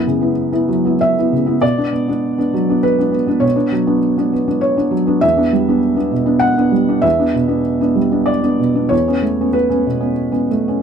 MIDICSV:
0, 0, Header, 1, 2, 480
1, 0, Start_track
1, 0, Key_signature, 2, "minor"
1, 0, Tempo, 620476
1, 1256, Time_signature, 3, 2, 24, 8
1, 1728, Tempo, 601805
1, 5568, Tempo, 626305
1, 7968, Tempo, 659341
1, 8436, End_track
2, 0, Start_track
2, 0, Title_t, "Felt piano"
2, 0, Program_c, 0, 0
2, 0, Control_c, 0, 64, 127
2, 0, Note_on_c, 0, 59, 41
2, 0, Note_on_c, 0, 64, 45
2, 0, Note_on_c, 0, 71, 63
2, 55, Note_on_c, 0, 49, 40
2, 165, Note_off_c, 0, 59, 0
2, 165, Note_on_c, 0, 59, 38
2, 172, Note_off_c, 0, 64, 0
2, 172, Note_on_c, 0, 64, 42
2, 241, Note_off_c, 0, 49, 0
2, 383, Note_off_c, 0, 59, 0
2, 387, Note_off_c, 0, 64, 0
2, 406, Note_on_c, 0, 59, 40
2, 408, Note_on_c, 0, 64, 42
2, 519, Note_off_c, 0, 59, 0
2, 520, Note_off_c, 0, 64, 0
2, 530, Note_on_c, 0, 54, 40
2, 657, Note_on_c, 0, 59, 36
2, 669, Note_on_c, 0, 64, 40
2, 731, Note_off_c, 0, 54, 0
2, 773, Note_off_c, 0, 71, 0
2, 780, Note_on_c, 0, 76, 82
2, 877, Note_off_c, 0, 59, 0
2, 884, Note_off_c, 0, 64, 0
2, 921, Note_on_c, 0, 64, 41
2, 925, Note_on_c, 0, 59, 36
2, 1019, Note_off_c, 0, 64, 0
2, 1021, Note_off_c, 0, 59, 0
2, 1026, Note_on_c, 0, 49, 38
2, 1130, Note_on_c, 0, 59, 39
2, 1134, Note_on_c, 0, 64, 44
2, 1212, Note_off_c, 0, 49, 0
2, 1240, Note_off_c, 0, 59, 0
2, 1242, Note_off_c, 0, 64, 0
2, 1249, Note_on_c, 0, 74, 78
2, 1254, Note_on_c, 0, 47, 52
2, 1256, Note_off_c, 0, 76, 0
2, 1270, Control_c, 0, 64, 0
2, 1369, Note_off_c, 0, 47, 0
2, 1374, Note_on_c, 0, 59, 39
2, 1377, Note_on_c, 0, 62, 44
2, 1408, Control_c, 0, 64, 127
2, 1478, Note_off_c, 0, 59, 0
2, 1482, Note_off_c, 0, 62, 0
2, 1490, Note_on_c, 0, 59, 41
2, 1599, Note_off_c, 0, 59, 0
2, 1610, Note_on_c, 0, 59, 41
2, 1617, Note_on_c, 0, 62, 44
2, 1825, Note_off_c, 0, 59, 0
2, 1829, Note_off_c, 0, 62, 0
2, 1845, Note_on_c, 0, 59, 38
2, 1850, Note_on_c, 0, 62, 40
2, 1956, Note_off_c, 0, 59, 0
2, 1958, Note_off_c, 0, 62, 0
2, 1969, Note_on_c, 0, 54, 44
2, 2092, Note_on_c, 0, 59, 38
2, 2102, Note_on_c, 0, 62, 40
2, 2162, Note_off_c, 0, 54, 0
2, 2205, Note_on_c, 0, 71, 78
2, 2207, Note_off_c, 0, 74, 0
2, 2308, Note_off_c, 0, 59, 0
2, 2314, Note_off_c, 0, 62, 0
2, 2328, Note_on_c, 0, 59, 42
2, 2336, Note_on_c, 0, 62, 41
2, 2423, Note_off_c, 0, 59, 0
2, 2435, Note_on_c, 0, 59, 42
2, 2442, Note_off_c, 0, 62, 0
2, 2544, Note_off_c, 0, 59, 0
2, 2556, Note_on_c, 0, 59, 41
2, 2563, Note_on_c, 0, 62, 45
2, 2658, Note_on_c, 0, 73, 73
2, 2663, Note_on_c, 0, 47, 51
2, 2671, Note_off_c, 0, 59, 0
2, 2675, Note_off_c, 0, 62, 0
2, 2689, Note_off_c, 0, 71, 0
2, 2707, Control_c, 0, 64, 0
2, 2783, Note_on_c, 0, 59, 39
2, 2787, Note_on_c, 0, 62, 44
2, 2793, Note_off_c, 0, 47, 0
2, 2855, Control_c, 0, 64, 127
2, 2904, Note_off_c, 0, 59, 0
2, 2906, Note_off_c, 0, 62, 0
2, 2913, Note_on_c, 0, 54, 43
2, 3033, Note_on_c, 0, 59, 42
2, 3035, Note_on_c, 0, 62, 45
2, 3113, Note_off_c, 0, 54, 0
2, 3255, Note_off_c, 0, 59, 0
2, 3256, Note_off_c, 0, 62, 0
2, 3277, Note_on_c, 0, 59, 41
2, 3282, Note_on_c, 0, 62, 44
2, 3387, Note_off_c, 0, 59, 0
2, 3391, Note_off_c, 0, 62, 0
2, 3399, Note_on_c, 0, 59, 42
2, 3506, Note_off_c, 0, 59, 0
2, 3518, Note_on_c, 0, 59, 39
2, 3518, Note_on_c, 0, 62, 42
2, 3612, Note_off_c, 0, 73, 0
2, 3624, Note_on_c, 0, 73, 69
2, 3734, Note_off_c, 0, 59, 0
2, 3734, Note_off_c, 0, 62, 0
2, 3752, Note_on_c, 0, 59, 39
2, 3754, Note_on_c, 0, 62, 43
2, 3861, Note_on_c, 0, 54, 42
2, 3864, Note_off_c, 0, 59, 0
2, 3865, Note_off_c, 0, 62, 0
2, 3872, Note_off_c, 0, 73, 0
2, 3988, Note_on_c, 0, 59, 43
2, 3996, Note_on_c, 0, 62, 47
2, 4063, Note_off_c, 0, 54, 0
2, 4101, Note_off_c, 0, 59, 0
2, 4104, Note_on_c, 0, 76, 89
2, 4106, Note_off_c, 0, 62, 0
2, 4112, Note_on_c, 0, 40, 57
2, 4133, Control_c, 0, 64, 0
2, 4230, Note_on_c, 0, 59, 42
2, 4230, Note_on_c, 0, 62, 47
2, 4233, Note_off_c, 0, 40, 0
2, 4265, Control_c, 0, 64, 127
2, 4342, Note_off_c, 0, 59, 0
2, 4343, Note_off_c, 0, 62, 0
2, 4355, Note_on_c, 0, 55, 45
2, 4482, Note_on_c, 0, 59, 44
2, 4482, Note_on_c, 0, 62, 44
2, 4549, Note_off_c, 0, 55, 0
2, 4690, Note_off_c, 0, 59, 0
2, 4695, Note_off_c, 0, 62, 0
2, 4702, Note_on_c, 0, 59, 43
2, 4707, Note_on_c, 0, 62, 45
2, 4816, Note_off_c, 0, 59, 0
2, 4819, Note_off_c, 0, 62, 0
2, 4823, Note_on_c, 0, 47, 45
2, 4936, Note_on_c, 0, 59, 41
2, 4941, Note_on_c, 0, 62, 45
2, 5022, Note_off_c, 0, 47, 0
2, 5047, Note_on_c, 0, 78, 82
2, 5069, Note_off_c, 0, 76, 0
2, 5164, Note_off_c, 0, 59, 0
2, 5167, Note_off_c, 0, 62, 0
2, 5192, Note_on_c, 0, 59, 41
2, 5195, Note_on_c, 0, 62, 46
2, 5306, Note_off_c, 0, 59, 0
2, 5306, Note_on_c, 0, 55, 41
2, 5307, Note_off_c, 0, 62, 0
2, 5437, Note_on_c, 0, 59, 39
2, 5439, Note_on_c, 0, 62, 46
2, 5510, Note_off_c, 0, 55, 0
2, 5542, Note_on_c, 0, 76, 86
2, 5551, Note_off_c, 0, 59, 0
2, 5551, Note_on_c, 0, 40, 54
2, 5552, Note_off_c, 0, 62, 0
2, 5552, Note_off_c, 0, 78, 0
2, 5580, Control_c, 0, 64, 0
2, 5674, Note_off_c, 0, 40, 0
2, 5678, Note_on_c, 0, 59, 42
2, 5683, Note_on_c, 0, 62, 48
2, 5717, Control_c, 0, 64, 127
2, 5788, Note_off_c, 0, 59, 0
2, 5791, Note_off_c, 0, 62, 0
2, 5793, Note_on_c, 0, 47, 44
2, 5898, Note_on_c, 0, 59, 43
2, 5907, Note_on_c, 0, 62, 42
2, 5989, Note_off_c, 0, 47, 0
2, 6125, Note_off_c, 0, 59, 0
2, 6130, Note_off_c, 0, 62, 0
2, 6151, Note_on_c, 0, 59, 43
2, 6155, Note_on_c, 0, 62, 45
2, 6263, Note_on_c, 0, 55, 42
2, 6265, Note_off_c, 0, 59, 0
2, 6267, Note_off_c, 0, 62, 0
2, 6385, Note_on_c, 0, 59, 38
2, 6387, Note_on_c, 0, 62, 42
2, 6465, Note_off_c, 0, 55, 0
2, 6494, Note_on_c, 0, 74, 72
2, 6510, Note_off_c, 0, 76, 0
2, 6608, Note_off_c, 0, 59, 0
2, 6609, Note_off_c, 0, 62, 0
2, 6631, Note_on_c, 0, 62, 41
2, 6634, Note_on_c, 0, 59, 38
2, 6743, Note_off_c, 0, 62, 0
2, 6745, Note_off_c, 0, 59, 0
2, 6751, Note_on_c, 0, 47, 40
2, 6872, Note_on_c, 0, 59, 37
2, 6873, Note_on_c, 0, 62, 46
2, 6948, Note_off_c, 0, 47, 0
2, 6978, Note_on_c, 0, 73, 77
2, 6984, Note_off_c, 0, 59, 0
2, 6985, Note_off_c, 0, 62, 0
2, 6987, Note_off_c, 0, 74, 0
2, 6990, Note_on_c, 0, 40, 52
2, 7017, Control_c, 0, 64, 0
2, 7113, Note_off_c, 0, 40, 0
2, 7124, Note_on_c, 0, 59, 40
2, 7127, Note_on_c, 0, 61, 41
2, 7146, Control_c, 0, 64, 127
2, 7232, Note_off_c, 0, 59, 0
2, 7234, Note_off_c, 0, 61, 0
2, 7234, Note_on_c, 0, 57, 38
2, 7376, Note_on_c, 0, 59, 36
2, 7377, Note_on_c, 0, 61, 38
2, 7432, Note_off_c, 0, 57, 0
2, 7472, Note_on_c, 0, 71, 72
2, 7473, Note_off_c, 0, 73, 0
2, 7584, Note_off_c, 0, 59, 0
2, 7587, Note_off_c, 0, 61, 0
2, 7595, Note_on_c, 0, 59, 37
2, 7602, Note_on_c, 0, 61, 42
2, 7707, Note_off_c, 0, 59, 0
2, 7711, Note_off_c, 0, 61, 0
2, 7725, Note_on_c, 0, 47, 39
2, 7833, Note_on_c, 0, 59, 36
2, 7834, Note_on_c, 0, 61, 36
2, 7918, Note_off_c, 0, 47, 0
2, 8055, Note_off_c, 0, 59, 0
2, 8056, Note_off_c, 0, 61, 0
2, 8070, Note_on_c, 0, 59, 34
2, 8070, Note_on_c, 0, 61, 36
2, 8184, Note_off_c, 0, 59, 0
2, 8184, Note_off_c, 0, 61, 0
2, 8206, Note_on_c, 0, 57, 37
2, 8329, Note_on_c, 0, 59, 31
2, 8334, Note_on_c, 0, 61, 34
2, 8399, Note_off_c, 0, 57, 0
2, 8436, Note_off_c, 0, 59, 0
2, 8436, Note_off_c, 0, 61, 0
2, 8436, Note_off_c, 0, 71, 0
2, 8436, End_track
0, 0, End_of_file